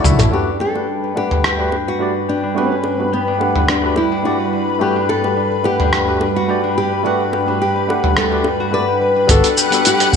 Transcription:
Already playing: nylon-string guitar F#4, harp F#4 A4
0.02 fretless electric bass C#2, tine electric piano A3 D4 E4 F#4 E5, harp C#4, mid tom, high tom, cabasa
0.19 fretless electric bass A1, harp A4, closed hi-hat, mid tom, high bongo, cabasa
0.30 analog synth pad G2 B4, tine electric piano A3 D4 F#4 G4, harp D4, nylon-string guitar G4
0.34 tine electric piano B4
0.60 harp G4, nylon-string guitar A4, high bongo
0.73 tine electric piano A3 D4 F#4 G4 B4, harp D4, high bongo
1.03 harp B4
1.14 tine electric piano A3 D4 G4 B4 F#5, harp D4, nylon-string guitar G4, high bongo
1.31 mid tom
1.44 harp G4, cross-stick
1.57 tine electric piano A3 D4 F#4 G4 B4, harp D4
1.72 high bongo
1.87 nylon-string guitar F#4, harp B4
1.99 tine electric piano A3 D4 F#4 G4 D5, harp D4
2.28 nylon-string guitar D4, harp G4
2.43 harp D4
2.54 tine electric piano A3 D4 F#4 G4 B4, nylon-string guitar C#4
2.71 harp B4
2.84 harp D4, high bongo
2.98 tine electric piano A3 D4 F#4 G4 B4
3.03 nylon-string guitar B3
3.13 nylon-string guitar B3, harp G4
3.28 harp D4
3.38 tine electric piano A3 D4 G4 B4 F#5, high bongo
3.56 harp B4, mid tom
3.68 harp D4, nylon-string guitar D4, cross-stick
3.82 tine electric piano A3 D4 F#4 G4 B4
3.96 nylon-string guitar E4, harp G4, high bongo
4.12 harp D4
4.23 tine electric piano A3 D4 F#4 G4 D5, nylon-string guitar F#4
4.40 harp B4
4.53 harp D4
4.79 tine electric piano A3 D4 F#4 G4 B4, harp G4, nylon-string guitar G4
4.96 harp D4
5.09 nylon-string guitar A4, high bongo
5.22 tine electric piano A3 D4 F#4 G4 B4, harp B4, high bongo
5.37 harp D4
5.63 tine electric piano A3 D4 G4 B4 F#5, harp G4, nylon-string guitar G4, high bongo
5.80 harp D4, mid tom
5.93 cross-stick
6.06 tine electric piano A3 D4 F#4 G4 B4, harp B4
6.21 harp D4, high bongo
6.36 nylon-string guitar F#4
6.47 tine electric piano A3 D4 F#4 G4 D5, harp G4
6.64 harp D4
6.78 nylon-string guitar G4
6.92 harp B4
7.03 tine electric piano A3 D4 F#4 G4 B4, harp D4, nylon-string guitar F#4
7.33 harp G4, high bongo
7.46 tine electric piano A3 D4 F#4 G4 B4, harp D4
7.62 nylon-string guitar G4
7.76 harp B4
7.87 tine electric piano A3 D4 G4 B4 F#5, harp D4, high bongo
8.04 mid tom
8.17 harp G4, nylon-string guitar A4, cross-stick
8.30 tine electric piano A3 D4 F#4 G4 B4, harp D4
8.44 harp D4, high bongo
8.60 harp F#4
8.71 tine electric piano A3 D4 F#4 G4 D5, harp B4, nylon-string guitar B4
8.88 harp G4
9.01 harp B4
9.16 harp D4
9.27 fretless electric bass G1, tine electric piano G3 B3 D4 F#4 A4, analog synth pad G3 B4 F#5, harp D4, nylon-string guitar A4, kick, closed hi-hat, cabasa
9.44 closed hi-hat, cabasa
9.57 harp G4, cabasa
9.70 tine electric piano G3 B3 D4 F#4 A4, harp D4, closed hi-hat, cabasa
9.85 nylon-string guitar G4, closed hi-hat, cabasa
10.00 harp B4, closed hi-hat, cabasa
10.11 tine electric piano G3 B3 D4, kick

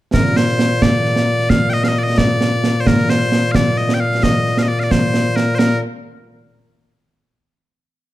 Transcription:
0.14 bagpipes A#2 A#4, concert bass drum, snare
0.25 snare
0.36 bagpipes C5, snare
0.48 snare
0.59 snare
0.82 bagpipes D5, concert bass drum, snare
1.05 snare
1.16 snare
1.39 snare
1.50 bagpipes F5, concert bass drum, snare
1.70 bagpipes D#5 G5, snare
1.84 bagpipes F5, snare
1.88 bagpipes D#5
1.99 bagpipes D5
2.04 bagpipes D#5, snare
2.18 bagpipes D5, concert bass drum, snare
2.41 snare
2.64 snare
2.80 bagpipes C5
2.87 bagpipes A#4, concert bass drum, snare
2.98 snare
3.09 bagpipes C5, snare
3.21 snare
3.32 snare
3.52 bagpipes D5 F5, concert bass drum, snare
3.77 bagpipes D#5, snare
3.89 snare
3.94 bagpipes G5
4.00 bagpipes F5
4.12 snare
4.23 bagpipes D#5, concert bass drum, snare
4.46 snare
4.57 bagpipes F5, snare
4.62 bagpipes D#5
4.68 bagpipes D5
4.80 bagpipes D5 F5, snare
4.91 bagpipes C5, concert bass drum, snare
5.14 snare
5.36 bagpipes A#4, snare
5.55 bagpipes A#4 C5
5.59 snare

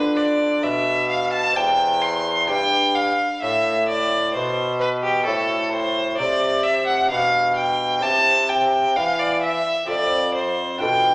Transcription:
Already playing: lute D3 B3 D4 F4, bassoon D3, violin B4
0.16 violin D5
0.63 bassoon B2, lute B2, violin E5
1.09 violin F5
1.33 violin A5
1.53 lute C4 G4, violin G5
1.57 bassoon E2, lute E2
2.02 violin C6
2.45 lute B3 D4 G4
2.50 bassoon G2, lute G2, violin G5
2.95 violin F5
3.42 lute A2, bassoon A2, violin E5
3.89 violin D5
4.34 lute B2, bassoon B2, violin C5
4.80 violin B4
5.03 violin G4
5.23 lute A3 C4 F#4, violin A4
5.27 lute A2, bassoon A2
5.72 violin C5
6.18 lute C3, bassoon C3, violin D5
6.63 violin E5
6.86 violin F#5
7.07 lute D4 G4, violin F5
7.11 bassoon B2, lute B2
7.56 violin G5
7.99 lute C4 E4 G4, violin A5
8.03 bassoon C3, lute C3
8.49 violin G5
8.96 lute E3, bassoon E3, violin F5
9.19 violin D5
9.42 violin E5
9.85 lute C4 F4 A4, violin D5
9.90 lute F2, bassoon F2
10.34 violin C5
10.78 lute D4 F4 A4, violin G5
10.82 lute B2, bassoon B2

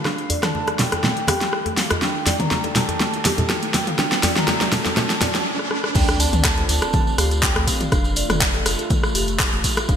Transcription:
Already playing: analog synth pad F5, riser
0.05 analog synth pad D#3 A4, kalimba D4, flute F5, cross-stick, snare, high conga
0.18 closed hi-hat
0.30 kalimba D5, open hi-hat, djembe bass
0.43 flute A5, cross-stick, snare, closed hi-hat, mid tom
0.54 kalimba A3, djembe tone
0.67 kalimba A4, cross-stick, closed hi-hat, djembe slap
0.79 flute G5, snare, open hi-hat, djembe slap, high conga, low conga
0.92 kalimba A4, cross-stick, closed hi-hat, djembe tone
1.03 kalimba A3, snare, high conga, low conga
1.17 closed hi-hat
1.27 kalimba G4, cross-stick, open hi-hat, djembe slap, djembe tone, high conga
1.41 snare, closed hi-hat
1.53 kalimba A4, cross-stick
1.66 kalimba A3, closed hi-hat, djembe tone
1.77 flute F5, snare, open hi-hat
1.90 kalimba F4, flute D#5, cross-stick, closed hi-hat, djembe bass
2.01 analog synth pad D#3 G5, kalimba D4, flute G5, snare, high conga
2.26 kalimba D5, snare, open hi-hat, djembe bass
2.40 flute A#5, closed hi-hat, mid tom, high conga
2.51 kalimba A3, snare, djembe tone
2.64 kalimba A4, closed hi-hat, djembe slap
2.75 flute A5, snare, open hi-hat, djembe slap, high conga, low conga
2.89 kalimba A4, closed hi-hat, djembe tone
3.00 kalimba A3, snare, djembe tone
3.14 closed hi-hat
3.25 kalimba G4, snare, open hi-hat, djembe slap, high conga, djembe tone
3.38 closed hi-hat, low conga, djembe bass
3.49 kalimba A4, snare
3.63 kalimba A3, closed hi-hat
3.74 flute G5, snare, open hi-hat, djembe tone, high conga
3.87 kalimba F4, flute F5, closed hi-hat, mid tom
3.98 analog synth pad A3, kalimba D4, flute G5, snare, high conga
4.12 snare, closed hi-hat
4.23 kalimba D5, snare, open hi-hat, djembe bass
4.36 flute A#5, snare, closed hi-hat, mid tom
4.48 kalimba A3, snare, djembe tone
4.61 kalimba A4, snare, closed hi-hat, djembe slap
4.72 flute A5, snare, open hi-hat, djembe slap, high conga, low conga
4.85 kalimba A4, snare, closed hi-hat, djembe tone
4.97 kalimba A3, snare, high conga, low conga
5.10 snare, closed hi-hat
5.21 kalimba D5, snare, open hi-hat, djembe slap, djembe tone, high conga, low conga
5.35 snare, closed hi-hat
5.59 cross-stick
5.71 cross-stick
5.84 cross-stick
5.95 analog synth bass D2, analog synth pad C4 F4 D5, kalimba D4, flute G5, kick, closed hi-hat, tambourine, crash, sub drop
6.09 cross-stick, closed hi-hat, tambourine
6.20 kalimba D5, flute A5, open hi-hat, tambourine
6.33 analog synth bass D2, closed hi-hat, mid tom, tambourine
6.44 kalimba A3, kick, cross-stick, clap, closed hi-hat, tambourine
6.58 kalimba A4, closed hi-hat
6.69 analog synth bass D2, flute A5, open hi-hat, tambourine
6.82 kalimba A4, cross-stick, closed hi-hat, tambourine
6.93 kalimba A3, kick, closed hi-hat, mid tom, tambourine
7.07 tambourine
7.18 analog synth bass D2, kalimba G4, flute F5, cross-stick, open hi-hat, tambourine
7.31 closed hi-hat, tambourine
7.43 flute G5, kick, clap, closed hi-hat, tambourine
7.56 analog synth bass D2, kalimba A3, cross-stick, closed hi-hat
7.67 flute F5, kick, open hi-hat, tambourine
7.80 kalimba F4, closed hi-hat, mid tom, tambourine
7.92 analog synth bass F1, analog synth pad A3 F4, kalimba D4, kick, cross-stick, closed hi-hat, tambourine
8.04 closed hi-hat, tambourine
8.16 kalimba D5, open hi-hat, tambourine
8.30 analog synth bass F1, cross-stick, closed hi-hat, mid tom, tambourine
8.41 kalimba A3, kick, clap, closed hi-hat, tambourine
8.54 kalimba A4, closed hi-hat
8.66 analog synth bass F1, cross-stick, open hi-hat, tambourine
8.79 kalimba A4, closed hi-hat, tambourine
8.90 kalimba A3, kick, closed hi-hat, mid tom, tambourine
9.03 cross-stick, tambourine
9.15 analog synth bass F1, kalimba G4, open hi-hat, tambourine
9.28 closed hi-hat, tambourine
9.40 kick, cross-stick, clap, closed hi-hat, tambourine
9.53 analog synth bass F1, kalimba A3, closed hi-hat
9.64 kick, open hi-hat, tambourine
9.77 kalimba F4, cross-stick, closed hi-hat, tambourine
9.89 analog synth bass D#1, analog synth pad D#3 G3, kalimba D4, flute F5, kick, closed hi-hat, tambourine

